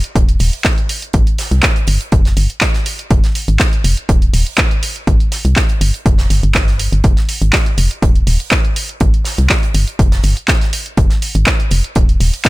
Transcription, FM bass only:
0.15 0.36 D#1 loud
0.40 0.51 D#1 loud
1.14 1.25 G#1 medium
1.51 1.61 C2 loud
1.88 1.98 G1 loud
2.12 2.33 F1 loud
2.37 2.48 G1 medium
3.11 3.21 F1 loud
3.48 3.58 G#1 loud
3.84 3.95 F1 loud
4.09 4.29 D#1 loud
4.34 4.44 D#1 loud
5.07 5.18 G#1 loud
5.45 5.54 C2 loud
5.81 5.92 G1 loud
6.06 6.26 F1 loud
6.30 6.41 G1 medium
6.43 6.89 G1 medium
6.92 7.02 G1 medium
7.04 7.15 F1 loud
7.42 7.51 G#1 loud
7.78 7.89 F1 loud
8.02 8.23 D#1 loud
8.27 8.38 D#1 loud
9.01 9.11 G#1 loud
9.38 9.48 C2 loud
9.75 9.85 G1 loud
9.99 10.20 F1 loud
10.24 10.34 G1 loud
10.97 11.08 F1 loud
11.35 11.45 G#1 loud
11.71 11.82 F1 loud
11.96 12.16 D#1 medium
12.20 12.31 D#1 loud

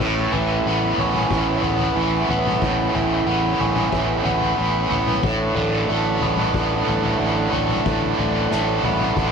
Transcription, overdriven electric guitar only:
0.00 1.67 A2 medium
0.32 1.30 E3 medium
0.67 1.63 B3 medium
1.00 2.63 C#4 medium
1.31 1.94 E3 medium
1.64 2.30 B3 medium
1.96 2.93 E3 medium
2.30 3.26 B3 medium
2.62 4.28 A2 medium
2.95 3.92 E3 medium
3.27 4.24 B3 medium
3.61 5.24 C#4 medium
3.93 4.56 E3 medium
4.25 4.90 B3 medium
4.57 5.24 E3 medium
4.90 5.26 B3 medium
5.23 7.86 A2 medium
5.55 6.52 D3 medium
5.89 6.85 A3 medium
6.22 7.89 B3 medium
6.54 7.17 D3 medium
6.85 7.51 A3 medium
7.18 8.18 D3 medium
7.51 8.51 A3 medium
7.86 9.32 A2 medium
8.19 9.16 D3 medium
8.52 9.32 A3 medium
8.85 9.32 B3 medium
9.17 9.32 D3 medium

